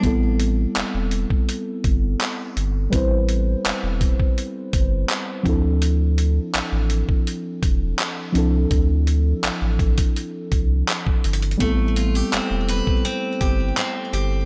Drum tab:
HH |x---x---x---x---x---x---x---x---|x---x---x---x---x---x---x---x---|x---x---x---x---x---x---x---x---|x---x---x---x-x-x---x---x---xxxx|
CP |--------x---------------x-------|--------x---------------x-------|--------x---------------x-------|--------x---------------x-------|
BD |o-------------o-----o-----------|o-----------o-o-----o-------o---|--------------o-----o-----------|o-----------o-o-----o-----o-----|

HH |x---x---x---x---x---x---x---x---|
CP |--------x---------------x-------|
BD |o-------------o-----o-----------|